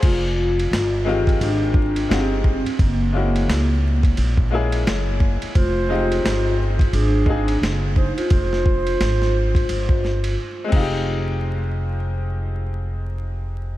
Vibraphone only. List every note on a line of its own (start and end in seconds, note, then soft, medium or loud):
0.04 1.46 F4 loud
1.43 2.13 D4 loud
2.12 2.82 C4 medium
2.82 4.15 A#3 medium
5.56 6.55 F4 loud
6.94 7.59 D4 loud
7.97 8.19 D#4 loud
8.18 10.34 F4 loud